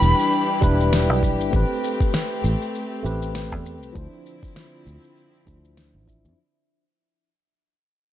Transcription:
Already playing: E3 G3 D4 E4 G4 B4 B5
0.02 E1, shaker
0.19 shaker
0.33 shaker
0.61 E1 G3 D4 E4 B4, kick, shaker
0.80 shaker
0.93 snare, shaker
1.10 B1
1.23 kick, shaker
1.40 G1, shaker
1.51 A1 A3 C4 G4, kick, shaker
1.56 B4
1.84 shaker
2.00 kick, shaker
2.14 snare, shaker
2.44 A1, shaker
2.62 shaker
2.75 shaker
3.03 A1 A3 C4 G4 B4, shaker
3.22 shaker
3.35 snare, shaker
3.52 E2, kick
3.66 shaker
3.82 C2, shaker
3.93 D2 D3 F3 C4 D4 E4, kick, shaker
3.98 C5
4.26 shaker
4.43 kick, shaker
4.56 snare, shaker
4.87 D2, shaker
5.04 shaker
5.17 shaker
5.46 D2 F3 D4 E4 C5, kick, shaker
5.65 shaker
5.77 snare, shaker
5.94 A1
6.06 F3 D4 E4 E5, kick, shaker
6.25 F2, shaker

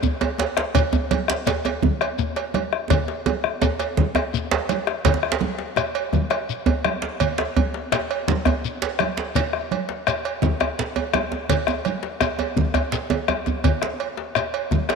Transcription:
0.03 djembe bass, shekere
0.21 cowbell, djembe slap, djembe tone
0.38 bombo rim, cowbell, djembe slap, djembe tone
0.57 bombo rim, djembe slap
0.74 bombo low, cowbell, djembe tone, djembe bass, low conga, shekere
0.93 bombo rim, djembe slap, djembe bass, shekere
1.11 cowbell, high conga, djembe tone, shekere
1.28 bombo rim, djembe slap, shekere
1.46 cowbell, djembe slap, djembe tone, djembe bass, shekere
1.65 bombo rim, cowbell, djembe slap, djembe tone, shekere
1.82 bombo low, high conga, low conga, djembe bass
2.01 bombo rim, cowbell
2.18 djembe bass, shekere
2.36 cowbell, djembe slap
2.54 bombo rim, cowbell, high conga, djembe tone
2.73 bombo rim
2.90 bombo rim, bombo low, cowbell, djembe tone, high conga, djembe bass, low conga, shekere
3.08 bombo rim, djembe slap
3.26 cowbell, djembe tone, high conga
3.44 bombo rim, high conga
3.62 cowbell, djembe slap, djembe tone, high conga, djembe bass, shekere
3.80 cowbell, djembe slap, shekere
3.97 bombo low, djembe tone, high conga, low conga
4.15 bombo rim, cowbell, djembe tone
4.34 bombo rim, djembe bass, shekere
4.51 cowbell, djembe slap, high conga, djembe bass
4.69 bombo rim, cowbell, djembe slap, high conga, shekere
4.87 bombo rim, djembe slap
5.05 bombo low, cowbell, djembe slap, low conga, djembe bass, shekere
5.14 djembe tone
5.23 bombo rim, high conga
5.32 djembe slap
5.41 high conga, djembe tone
5.58 djembe slap
5.76 bombo rim, cowbell, djembe tone, shekere
5.95 cowbell, djembe slap
6.13 bombo rim, bombo low, high conga, djembe bass, low conga, shekere
6.30 bombo rim, cowbell, djembe slap, high conga
6.49 shekere
6.66 cowbell, djembe bass
6.84 bombo rim, cowbell, djembe tone, high conga
7.02 djembe slap
7.20 bombo low, cowbell, djembe bass, low conga, shekere
7.38 bombo rim, djembe slap, high conga
7.57 cowbell, high conga, djembe bass
7.74 djembe slap
7.92 bombo rim, cowbell, djembe slap, djembe tone, shekere
8.10 cowbell, djembe slap
8.28 bombo rim, bombo low, djembe slap, high conga, djembe bass, low conga, shekere
8.45 bombo rim, cowbell, djembe slap, djembe bass
8.65 shekere
8.82 cowbell, djembe slap
8.99 bombo rim, cowbell, djembe tone, high conga
9.17 djembe slap
9.35 bombo low, cowbell, djembe bass, low conga, shekere
9.53 bombo rim, high conga
9.71 cowbell, high conga
9.89 djembe slap
10.07 bombo rim, cowbell, djembe tone, shekere
10.25 cowbell, djembe slap
10.42 bombo rim, bombo low, high conga, djembe tone, low conga, djembe bass, shekere
10.60 bombo rim, cowbell, djembe slap, high conga, djembe tone
10.79 djembe slap, shekere
10.96 cowbell, djembe tone
11.14 bombo rim, cowbell, djembe tone, high conga
11.32 djembe slap, djembe tone
11.49 bombo low, cowbell, djembe slap, djembe bass, low conga, shekere
11.67 bombo rim, djembe tone, high conga, shekere
11.85 cowbell, high conga, shekere
12.03 djembe slap
12.21 bombo rim, cowbell, djembe tone, shekere
12.39 cowbell, djembe slap, djembe tone, high conga, shekere
12.56 bombo low, high conga, djembe bass, low conga
12.74 bombo rim, cowbell, djembe slap, djembe bass, shekere
12.92 djembe slap, high conga, shekere
13.10 bombo rim, cowbell, djembe tone, low conga
13.28 bombo rim, cowbell, djembe slap, djembe tone, high conga, shekere
13.46 djembe slap, high conga, djembe bass, shekere
13.64 bombo low, cowbell, djembe bass, low conga, shekere
13.82 bombo rim, djembe slap, high conga
14.00 cowbell
14.17 djembe slap
14.35 bombo rim, cowbell, djembe tone, shekere
14.53 cowbell, djembe slap
14.71 bombo rim, bombo low, high conga, djembe bass, low conga, shekere
14.89 bombo rim, cowbell, djembe slap, high conga

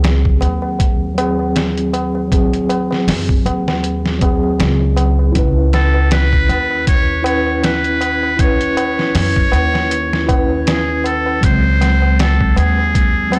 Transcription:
Already playing: C#2 F#3 C4 G#4
0.03 snare, closed hi-hat, tabla na
0.25 kick
0.41 D#2, closed hi-hat, tabla na
0.62 tabla na
0.79 kick, closed hi-hat, tabla na
1.14 F#3 C4, closed hi-hat, tabla na
1.21 G#4
1.39 tabla na
1.56 snare, closed hi-hat, tabla na
1.78 closed hi-hat
1.93 closed hi-hat, tabla na
2.15 tabla na
2.28 F#3 C4
2.32 G#4, kick, closed hi-hat, tabla na
2.53 closed hi-hat
2.69 closed hi-hat, tabla na
2.91 snare, tabla na
3.07 F#2, snare, open hi-hat, tabla na
3.29 kick
3.45 D#2, closed hi-hat, tabla na
3.68 snare, tabla na
3.83 closed hi-hat, tabla na
4.06 snare
4.18 F#3 C4, kick, closed hi-hat
4.22 G#4, tabla na
4.43 tabla na
4.58 C#2, snare, closed hi-hat, tabla na
4.96 closed hi-hat, tabla na
5.19 tabla na
5.32 C#2 C#4 E4, kick, closed hi-hat, tabla na
5.39 B4
5.73 A4, snare, closed hi-hat, tabla na
5.94 tabla na
6.11 B4, snare, closed hi-hat, tabla na
6.33 kick
6.49 D#2, closed hi-hat, tabla na
6.70 tabla na
6.87 C#5, kick, closed hi-hat, tabla na
7.23 C#4 E4 C#5, closed hi-hat, tabla na
7.29 B4
7.46 tabla na
7.63 B4, snare, closed hi-hat, tabla na
7.84 closed hi-hat
8.01 closed hi-hat, tabla na
8.23 tabla na
8.37 C#4 E4 C#5, kick, closed hi-hat, tabla na
8.44 B4
8.61 closed hi-hat
8.77 closed hi-hat, tabla na
8.99 snare, tabla na
9.15 F#2 C#5, snare, open hi-hat, tabla na
9.36 kick
9.52 D#2, closed hi-hat, tabla na
9.74 snare, tabla na
9.91 closed hi-hat, tabla na
10.13 snare
10.27 C#4 E4, kick, closed hi-hat, tabla na
10.33 B4
10.50 tabla na
10.67 G#4, snare, closed hi-hat, tabla na
11.04 A4, closed hi-hat, tabla na
11.26 tabla na
11.41 C#2 F#3 C4 C5, kick, closed hi-hat, tabla na
11.47 G#3
11.81 snare, closed hi-hat, tabla na
12.02 tabla na
12.19 A4, snare, closed hi-hat, tabla na
12.41 kick
12.56 D#2 G#4, closed hi-hat, tabla na
12.78 tabla na
12.95 kick, closed hi-hat, tabla na
13.30 F#3 C4, closed hi-hat, tabla na
13.35 A4

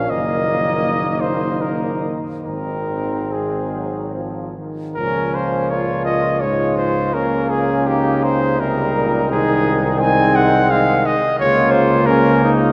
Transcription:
Already playing: A#2 C#4 F5
0.10 F#1 D#3 A#3 D#5
1.21 C5
1.61 A#4
2.44 G#1 G#2 A#4
2.49 C4
3.32 G#3 G#4
3.75 F#3
4.15 F3
4.57 D#3
4.95 C#2 A#2 F3 C#4 A#4
5.35 C5
5.69 F4 C#5
6.05 D#5
6.40 G#2 G#3 F4 C#5
6.77 C5
7.13 C#3 A#3 C#4 A#4
7.50 G#4
7.87 D#4 G4
8.23 C5
8.59 C3 G3 D#4 A#4
8.94 A#2
9.29 C2 D#3 G#3 G#4
9.99 G#3 C4 G#5
10.35 F#5
10.70 D#3 F5
11.06 D#5
11.39 C#2 C#3 A#3 F4 C#5
11.71 C5
12.06 C#3 C#4 A#4
12.44 D#4

